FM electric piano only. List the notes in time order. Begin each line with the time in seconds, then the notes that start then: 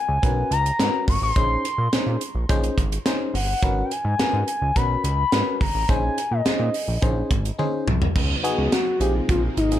0.22 C#4 F#4 A#4 B4
0.79 C#4 F#4 A#4 B4
1.36 C#4 D#4 G#4 C5
1.93 C#4 D#4 G#4 C5
2.49 C#4 D#4 G#4 C5
3.06 C#4 D#4 G#4 C5
3.62 C#4 F#4 A#4 B4
4.19 C#4 F#4 A#4 B4
4.76 C#4 F#4 A#4 B4
5.32 C#4 F#4 A#4 B4
5.89 C#4 D#4 G#4 C5
6.45 C#4 D#4 G#4 C5
7.02 C#4 D#4 G#4 C5
7.58 C#4 D#4 G#4 C5
8.43 B3 D#4 F#4 G#4
9.00 C4 D#4 F4 G#4
9.71 C4 D#4 F4 G#4